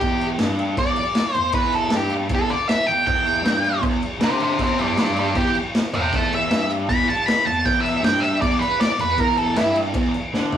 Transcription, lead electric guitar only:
0.00 0.27 G4 loud
0.79 1.35 D5 loud
1.35 1.52 C5 loud
1.54 1.73 B4 loud
1.75 1.96 A4 medium
1.96 2.13 G4 loud
2.35 2.51 A4 medium
2.50 2.68 D5 medium
2.68 2.87 E5 medium
2.87 3.06 G5 medium
3.07 3.81 G5 loud
4.24 4.41 G4 medium
4.24 4.42 E5 medium
4.42 4.60 G4 medium
4.42 4.61 E5 medium
4.63 4.80 G4 medium
4.63 4.81 E5 medium
4.80 4.98 B4 medium
4.80 4.98 D5 medium
4.99 5.17 B4 medium
4.99 5.18 D5 medium
5.19 5.36 B4 medium
5.19 5.37 D5 medium
5.37 5.55 G4 medium
5.94 6.13 E5 medium
5.94 6.15 G5 loud
6.15 6.33 E5 medium
6.15 6.33 A5 medium
6.35 6.71 E5 loud
6.89 7.08 B5 loud
7.08 7.27 A5 medium
7.26 7.45 B5 loud
7.45 7.65 A5 medium
7.65 7.84 G5 medium
7.81 8.02 E5 medium
8.05 8.23 G5 medium
8.20 8.40 E5 loud
8.41 8.60 D5 loud
8.59 8.79 B4 loud
8.80 8.99 D5 loud
9.01 9.20 B4 loud
9.20 9.37 A#4 medium
9.38 9.57 A4 loud
9.57 9.76 E4 loud

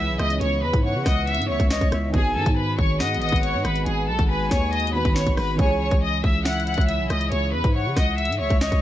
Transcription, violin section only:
0.00 0.15 E5 medium
0.00 0.16 E6 medium
0.20 0.37 D#5 medium
0.20 0.38 D#6 medium
0.41 0.59 C#5 medium
0.41 0.59 C#6 medium
0.63 0.80 B4 medium
0.63 0.81 B5 medium
0.84 1.02 C#5 medium
0.84 1.02 C#6 medium
1.06 1.24 D#5 medium
1.06 1.24 D#6 medium
1.27 1.45 E5 medium
1.27 1.45 E6 medium
1.49 1.67 C#5 medium
1.49 1.67 C#6 medium
1.70 1.88 C#5 medium
1.70 1.88 C#6 medium
2.14 2.31 G#4 medium
2.14 2.32 G#5 medium
2.35 2.53 A4 medium
2.35 2.53 A5 medium
2.57 2.74 B4 medium
2.57 2.75 B5 medium
2.78 2.96 C#5 medium
2.78 2.97 C#6 medium
3.00 3.18 D#5 medium
3.00 3.18 D#6 medium
3.22 3.39 D#5 medium
3.22 3.40 D#6 medium
3.43 3.61 C#5 medium
3.43 3.61 C#6 medium
3.65 3.82 B4 medium
3.65 3.83 B5 medium
3.86 4.04 G#4 medium
3.86 4.04 G#5 medium
4.08 4.26 A4 medium
4.08 4.26 A5 medium
4.30 4.47 B4 medium
4.30 4.48 B5 medium
4.51 4.69 C#5 medium
4.51 4.69 C#6 medium
4.72 4.90 D#5 medium
4.72 4.91 D#6 medium
4.94 5.12 B4 medium
4.94 5.12 B5 medium
5.16 5.33 C#5 medium
5.16 5.34 C#6 medium
5.37 5.55 B4 medium
5.37 5.55 B5 medium
5.59 5.77 C#5 loud
5.59 5.77 C#6 medium
5.80 5.98 C#5 loud
5.80 5.99 C#6 medium
6.02 6.20 D#5 medium
6.02 6.20 D#6 medium
6.24 6.41 E5 medium
6.24 6.42 E6 medium
6.45 6.63 F#5 medium
6.45 6.63 F#6 medium
6.67 6.85 F#5 medium
6.67 6.85 F#6 medium
6.88 7.06 E5 medium
6.88 7.07 E6 medium
7.10 7.28 D#5 medium
7.10 7.28 D#6 medium
7.32 7.49 C#5 medium
7.32 7.50 C#6 medium
7.53 7.71 B4 medium
7.53 7.71 B5 medium
7.75 7.92 C#5 medium
7.75 7.93 C#6 medium
7.97 8.14 D#5 medium
7.97 8.15 D#6 medium
8.18 8.35 E5 medium
8.18 8.36 E6 medium
8.40 8.57 C#5 medium
8.40 8.58 C#6 medium
8.61 8.79 C#5 medium
8.61 8.79 C#6 medium

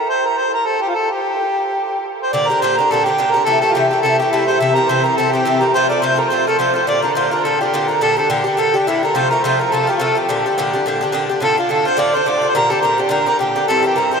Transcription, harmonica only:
0.09 0.27 C5 medium
0.25 0.39 A#4 medium
0.38 0.52 C5 medium
0.53 0.67 A#4 medium
0.66 0.83 A4 medium
0.81 0.90 G4 medium
0.89 0.96 F4 medium
0.95 1.12 A4 medium
1.10 2.07 G4 medium
2.22 2.34 C5 medium
2.32 2.50 D5 medium
2.48 2.63 A#4 medium
2.61 2.79 C5 medium
2.78 2.92 A#4 medium
2.90 3.05 A4 medium
3.04 3.33 G4 medium
3.31 3.44 A#4 medium
3.44 3.60 A4 medium
3.60 3.72 A4 medium
3.70 3.74 F4 medium
3.70 3.88 G4 medium
3.88 4.01 G4 medium
4.02 4.17 A4 medium
4.18 4.33 G4 medium
4.31 4.46 E4 medium
4.46 4.61 C5 medium
4.59 4.76 E5 medium
4.74 4.91 A#4 medium
4.89 5.05 C5 medium
5.04 5.15 A#4 medium
5.16 5.33 A4 medium
5.32 5.63 G4 medium
5.61 5.73 A#4 medium
5.74 5.88 C5 loud
5.89 6.04 D5 medium
6.02 6.20 C5 medium
6.18 6.32 A#4 medium
6.30 6.46 C5 medium
6.47 6.58 A4 medium
6.59 6.74 C5 medium
6.74 6.87 C5 medium
6.87 7.02 D5 medium
7.03 7.15 A#4 medium
7.15 7.32 C5 medium
7.31 7.45 A#4 medium
7.44 7.62 A4 medium
7.60 7.90 G4 medium
7.89 8.01 A#4 medium
8.02 8.16 A4 loud
8.17 8.31 A4 medium
8.30 8.46 G4 medium
8.46 8.60 G4 medium
8.59 8.78 A4 medium
8.77 8.88 G4 medium
8.87 9.03 E4 medium
9.03 9.17 A#4 medium
9.16 9.30 C5 medium
9.31 9.44 A#4 medium
9.43 9.61 C5 medium
9.59 9.74 A#4 medium
9.72 9.90 A4 medium
9.89 9.97 G4 medium
9.96 10.03 F4 medium
10.02 10.18 A4 medium
10.17 11.14 G4 medium
11.43 11.57 A4 loud
11.59 11.72 F4 medium
11.70 11.88 A4 medium
11.86 12.00 C5 medium
11.98 12.16 D5 medium
12.15 12.29 C5 medium
12.27 12.50 D5 medium
12.49 12.55 C5 medium
12.55 12.72 A#4 loud
12.70 12.81 A4 medium
12.80 13.00 A#4 medium
12.80 12.84 C5 medium
12.99 13.10 G4 medium
13.11 13.26 A#4 medium
13.27 13.38 A#4 loud
13.39 13.66 G4 medium
13.67 13.86 A4 medium
13.85 13.99 G4 medium
13.98 14.13 A#4 medium
14.13 14.20 C5 medium

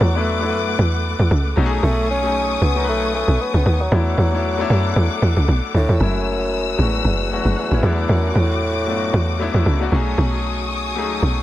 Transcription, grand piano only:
0.00 0.14 F#3 medium
0.00 0.15 B3 medium
0.00 0.16 D4 medium
0.00 0.17 E4 medium
0.00 0.43 A4 medium
0.14 0.35 F#3 medium
0.14 0.35 B3 medium
0.14 0.36 D4 medium
0.14 0.36 E4 medium
0.14 0.37 B4 medium
0.40 1.23 F#3 medium
0.40 1.24 B3 medium
0.40 1.24 D4 medium
0.40 1.25 E4 medium
0.40 0.48 A4 medium
0.50 1.28 B4 medium
1.56 2.09 F#3 loud
1.56 2.09 A3 medium
1.56 2.10 C#4 medium
1.56 2.10 D#4 medium
1.56 1.65 F#4 medium
1.66 2.14 G#4 loud
2.22 2.64 F#3 medium
2.22 2.64 A3 medium
2.22 2.65 C#4 medium
2.22 2.65 D#4 medium
2.22 2.66 G#4 medium
2.75 3.58 F#3 medium
2.75 3.59 A3 medium
2.75 3.59 C#4 medium
2.75 3.60 D#4 medium
2.75 2.83 A#4 medium
2.84 3.63 B4 medium
3.91 4.23 F#3 medium
3.91 4.24 A3 medium
3.91 4.24 B3 medium
3.91 4.25 D4 medium
3.91 4.25 E4 medium
4.31 4.52 F#3 medium
4.31 4.53 A3 medium
4.31 4.53 B3 medium
4.31 4.53 D4 medium
4.31 4.54 E4 medium
4.57 5.41 F#3 loud
4.57 5.41 A3 medium
4.57 5.42 B3 medium
4.57 5.42 D4 medium
4.57 5.43 E4 loud
5.99 6.64 F#3 medium
5.99 6.64 G#3 medium
5.99 6.65 A3 medium
5.99 6.65 C#4 medium
5.99 6.65 E4 medium
6.78 7.21 F#3 medium
6.78 7.22 G#3 medium
6.78 7.22 A3 medium
6.78 7.22 C#4 medium
6.78 7.23 F#4 medium
7.30 7.62 F#3 medium
7.30 7.63 G#3 medium
7.30 7.63 A3 medium
7.30 7.64 C#4 medium
7.30 7.64 F#4 medium
7.70 7.81 F#3 medium
7.70 7.81 G#3 medium
7.70 7.84 A3 medium
7.70 7.84 C#4 medium
7.70 7.84 E4 medium
7.82 8.67 F#3 medium
7.82 7.90 G#3 medium
7.82 8.68 B3 medium
7.82 8.68 D4 medium
7.82 8.68 E4 medium
7.89 8.70 A3 medium
8.86 9.30 F#3 medium
8.86 9.30 A3 medium
8.86 9.31 B3 medium
8.86 9.31 D4 medium
8.86 8.96 F4 medium
8.96 9.35 F#4 medium
9.39 9.71 F#3 medium
9.39 9.71 A3 medium
9.39 9.72 B3 medium
9.39 9.72 D4 medium
9.39 9.73 E4 loud
9.79 9.89 F#3 medium
9.79 9.90 A3 medium
9.79 9.92 B3 medium
9.79 9.93 D4 medium
9.79 9.93 F#4 loud
9.91 10.75 F#3 loud
9.91 10.76 A3 medium
9.91 10.76 C#4 medium
9.91 10.77 D#4 medium
9.91 10.77 G#4 loud
10.95 11.38 F#3 medium
10.95 11.39 A3 medium
10.95 11.39 C#4 medium
10.95 11.40 D#4 medium
10.95 11.40 G#4 medium

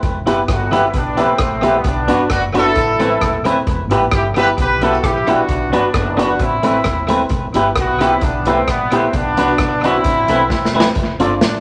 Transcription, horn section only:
0.50 0.82 B3 medium
0.50 0.82 F#4 medium
0.85 0.94 C4 medium
0.85 0.95 E4 medium
0.97 1.19 B3 medium
0.97 1.20 D4 medium
1.21 1.76 A3 medium
1.21 1.76 C4 medium
1.76 1.86 G3 medium
1.76 1.85 B3 medium
1.86 2.31 B3 medium
1.86 2.29 D4 medium
2.31 2.41 D4 medium
2.31 2.41 F#4 loud
2.56 3.42 E4 medium
2.56 3.42 A4 loud
4.13 4.24 E4 medium
4.13 4.23 G4 medium
4.37 4.47 G4 medium
4.37 4.47 B4 loud
4.60 4.81 G4 medium
4.60 4.81 B4 loud
4.82 5.03 F#4 medium
4.82 5.03 A4 medium
5.03 5.28 E4 medium
5.03 5.28 G4 loud
5.28 5.71 D4 medium
5.28 5.73 F#4 loud
5.72 6.18 B3 medium
5.72 6.18 D4 medium
6.20 6.39 D4 medium
6.20 6.39 F#4 medium
6.40 7.10 C4 medium
6.40 7.10 E4 medium
7.78 8.10 B3 medium
7.78 8.10 F#4 loud
8.11 8.23 C4 medium
8.11 8.22 E4 medium
8.22 8.47 B3 medium
8.22 8.46 D4 medium
8.48 8.69 A3 medium
8.48 8.69 C4 medium
8.69 8.93 G3 medium
8.69 8.93 B3 medium
8.93 9.14 A3 medium
8.93 9.14 C4 medium
9.14 9.84 B3 medium
9.14 9.84 D4 loud
9.85 10.75 C4 medium
9.85 10.75 E4 loud
11.43 11.60 A3 medium
11.43 11.60 D4 medium

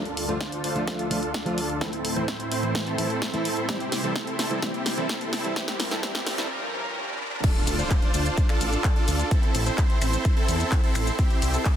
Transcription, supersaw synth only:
0.00 0.26 D4 medium
0.00 0.26 F4 medium
0.00 0.26 A4 medium
0.29 0.61 D4 medium
0.29 0.61 F4 medium
0.29 0.61 C5 medium
0.64 0.96 D4 medium
0.64 0.96 F4 medium
0.64 0.96 C5 medium
0.99 1.43 D4 medium
0.99 1.43 F4 medium
0.99 1.43 A4 loud
1.46 1.78 D4 medium
1.46 1.78 F4 medium
1.46 1.78 A4 medium
1.81 2.14 C4 medium
2.16 2.49 C4 medium
2.16 2.49 E4 medium
2.16 2.49 C5 medium
2.52 2.84 C4 medium
2.52 2.84 E4 medium
2.52 2.84 C5 medium
2.87 3.31 C4 loud
2.87 3.31 E4 medium
2.87 3.31 A4 loud
3.33 3.66 C4 medium
3.33 3.66 E4 medium
3.33 3.66 A4 medium
3.69 4.01 C4 medium
3.69 4.01 E4 medium
3.69 4.01 G4 medium
4.04 4.36 C4 medium
4.04 4.36 E4 medium
4.04 4.36 A4 medium
4.39 4.61 C4 medium
4.39 4.61 E4 medium
4.39 4.61 A4 medium
4.62 4.95 C4 medium
4.62 4.95 E4 medium
4.62 4.95 G4 medium
4.98 5.30 C4 medium
4.98 5.30 E4 medium
4.98 5.30 A4 medium
5.33 5.54 C4 medium
5.33 5.54 E4 medium
5.33 5.54 A4 medium
5.56 5.89 C4 medium
5.56 5.89 E4 medium
5.56 5.89 G4 medium
5.91 6.01 C4 medium
5.91 6.01 E4 medium
5.91 6.01 A4 medium
6.03 6.35 C4 medium
6.03 6.35 E4 medium
6.03 6.35 G4 medium
6.38 6.48 C4 medium
6.38 6.48 E4 medium
6.38 6.48 A4 loud
7.44 7.76 D4 medium
7.44 7.76 F4 medium
7.44 7.76 A4 medium
7.79 8.11 D4 medium
7.79 8.11 F4 medium
7.79 8.11 C5 loud
8.14 8.46 D4 medium
8.14 8.46 F4 medium
8.14 8.46 C5 medium
8.49 8.93 D4 medium
8.49 8.93 F4 medium
8.49 8.93 A4 loud
8.96 9.28 D4 medium
8.96 9.28 F4 medium
8.96 9.28 A4 medium
9.31 9.64 C4 medium
9.31 9.64 E4 medium
9.31 9.64 A4 medium
9.66 9.99 C4 medium
9.66 9.99 E4 medium
9.66 9.99 C5 medium
10.02 10.34 C4 medium
10.02 10.34 E4 medium
10.02 10.34 C5 medium
10.37 10.81 C4 medium
10.37 10.81 E4 medium
10.37 10.81 A4 loud
10.84 11.16 C4 medium
10.84 11.16 E4 medium
10.84 11.16 A4 medium
11.19 11.51 C4 medium
11.19 11.51 E4 medium
11.19 11.51 G4 medium
11.54 11.76 C4 medium
11.54 11.76 E4 medium
11.54 11.76 A4 loud

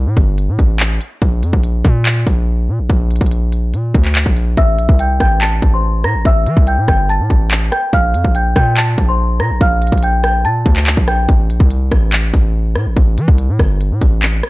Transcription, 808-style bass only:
0.06 0.16 A2 loud
0.17 0.50 G1 loud
0.48 0.58 A2 loud
0.59 0.99 A1 loud
1.22 1.44 A#1 loud
1.43 1.53 F2 medium
1.53 1.83 A#1 loud
1.85 2.25 A#2 loud
2.27 2.70 A#1 loud
2.69 2.81 A#2 loud
2.79 2.89 A#1 loud
2.90 3.20 A#1 loud
3.21 3.75 A#1 loud
3.73 3.93 A#2 loud
3.95 4.25 D2 loud
4.26 4.56 A#1 loud
4.57 4.80 A1 loud
4.78 4.88 A#1 loud
4.89 5.19 C2 loud
5.20 5.61 A1 loud
5.62 6.06 A1 loud
6.04 6.16 A2 loud
6.15 6.25 A1 loud
6.25 6.48 A1 loud
6.46 6.56 E3 medium
6.57 6.79 C2 loud
6.78 6.88 A2 loud
6.88 7.21 G1 loud
7.20 7.30 A2 loud
7.30 7.70 A1 loud
7.93 8.16 A#1 loud
8.14 8.24 F2 loud
8.25 8.55 A#1 loud
8.56 8.96 A#2 loud
8.98 9.41 A#1 loud
9.40 9.52 A#2 loud
9.51 9.60 A#1 loud
9.61 9.91 A#1 loud
9.92 10.46 A#1 loud
10.45 10.65 A#2 loud
10.66 10.96 D2 loud
10.97 11.27 A#1 loud
11.29 11.51 A1 loud
11.50 11.60 A#1 loud
11.60 11.90 C2 loud
11.92 12.32 A1 loud
12.34 12.77 A1 loud
12.76 12.88 A2 loud
12.86 12.96 A1 loud
12.97 13.19 A1 loud
13.18 13.28 E3 loud
13.28 13.51 C2 loud
13.49 13.59 A2 loud
13.59 13.92 G1 loud
13.91 14.01 A2 loud
14.02 14.42 A1 loud

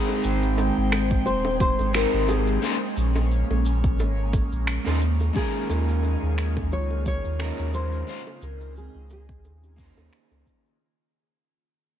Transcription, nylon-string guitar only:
0.00 1.23 G#4 medium
1.26 1.58 C5 loud
1.61 1.92 C5 loud
1.95 2.30 A#4 loud
2.29 2.93 G#4 medium
5.36 6.68 G#4 medium
6.73 7.06 C#5 loud
7.08 7.71 C#5 loud
7.74 8.43 C5 loud
8.43 8.77 A#4 medium
8.78 9.09 G#4 medium
9.13 9.76 G#4 medium

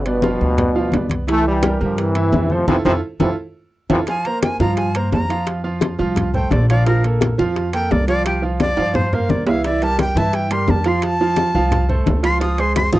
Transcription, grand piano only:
0.06 0.20 B3 medium
0.06 0.20 B4 medium
0.06 0.21 D5 medium
0.23 0.52 F3 medium
0.23 0.52 F4 medium
0.23 0.52 F5 medium
0.57 0.72 B3 medium
0.57 0.72 B4 medium
0.57 0.72 D5 medium
0.75 0.90 F3 medium
0.75 0.90 F4 medium
0.75 0.90 F5 medium
0.93 1.22 B3 medium
0.93 1.22 B4 medium
0.93 1.22 D5 medium
1.27 1.56 E3 medium
1.27 1.57 E4 medium
1.27 1.57 E5 medium
1.63 1.77 G3 medium
1.63 1.77 G4 medium
1.63 1.77 A#4 medium
1.81 2.09 G3 medium
1.81 2.09 G4 medium
1.81 2.09 A#4 medium
2.15 2.30 E3 medium
2.15 2.30 E4 medium
2.15 2.30 E5 medium
2.33 2.48 E3 medium
2.33 2.48 E4 medium
2.33 2.48 E5 medium
2.51 2.65 A3 medium
2.51 2.65 A4 medium
2.51 2.65 C5 medium
2.69 2.80 E4 loud
2.69 2.80 F4 medium
2.69 2.80 A4 loud
2.86 2.97 E4 loud
2.86 2.97 F4 loud
2.86 2.97 A4 loud
3.20 3.32 E4 loud
3.20 3.32 F4 loud
3.20 3.31 A4 medium
3.90 4.01 E4 medium
3.90 4.01 F4 medium
3.90 4.01 A4 medium
4.08 4.22 F3 medium
4.08 4.22 F4 medium
4.08 4.23 F5 medium
4.26 4.55 A#3 medium
4.26 4.55 A#4 medium
4.26 4.55 C5 medium
4.60 4.89 F3 medium
4.60 4.89 F4 medium
4.60 4.89 F5 loud
4.95 5.24 A#3 medium
4.95 5.24 A#4 medium
4.95 5.24 C5 medium
5.29 5.58 F3 medium
5.29 5.59 F4 medium
5.29 5.59 F5 medium
5.64 5.93 F3 medium
5.64 5.93 F4 medium
5.64 5.93 F5 medium
5.99 6.28 F3 medium
5.99 6.28 F4 loud
5.99 6.28 F5 medium
6.34 6.63 A3 medium
6.34 6.63 A4 medium
6.34 6.63 C5 medium
6.70 6.84 F3 medium
6.70 6.84 F4 medium
6.70 6.85 F5 medium
6.87 7.01 F3 medium
6.87 7.01 F4 medium
6.87 7.01 F5 medium
7.04 7.33 A#3 medium
7.04 7.33 A4 medium
7.04 7.33 A#4 medium
7.38 7.67 F3 medium
7.38 7.67 F4 medium
7.38 7.67 F5 loud
7.73 8.02 A#3 medium
7.73 8.02 A4 medium
7.73 8.02 A#4 medium
8.08 8.36 F3 medium
8.08 8.37 F4 medium
8.08 8.37 F5 medium
8.42 8.71 F3 medium
8.42 8.71 F4 medium
8.42 8.72 F5 medium
8.78 9.06 F3 medium
8.78 9.06 F4 medium
8.78 9.06 F5 medium
9.13 9.41 A#3 medium
9.13 9.41 A#4 medium
9.13 9.41 C5 medium
9.48 9.62 E3 medium
9.48 9.62 E4 medium
9.48 9.62 E5 medium
9.66 9.79 E3 medium
9.66 9.80 E4 medium
9.66 9.80 E5 medium
9.82 10.10 G3 medium
9.82 10.11 G4 medium
9.82 10.11 A#4 medium
10.16 10.45 E3 loud
10.16 10.45 E4 medium
10.16 10.45 E5 medium
10.51 10.79 G3 medium
10.51 10.80 G4 medium
10.51 10.80 A#4 medium
10.86 11.14 F3 loud
10.86 11.14 F4 medium
10.86 11.14 F5 loud
11.21 11.49 F3 loud
11.21 11.49 F4 medium
11.21 11.49 F5 medium
11.55 11.83 F3 loud
11.55 11.84 F4 loud
11.55 11.84 F5 medium
11.89 12.17 A3 medium
11.89 12.18 A4 medium
11.89 12.18 C5 medium
12.23 12.38 F3 medium
12.23 12.38 F4 loud
12.23 12.38 F5 medium
12.40 12.55 F3 medium
12.40 12.55 F4 medium
12.40 12.55 F5 medium
12.58 12.87 G#3 medium
12.58 12.87 G#4 medium
12.58 12.87 C5 medium
12.93 12.99 F3 loud
12.93 12.99 F4 loud
12.93 12.99 F5 medium

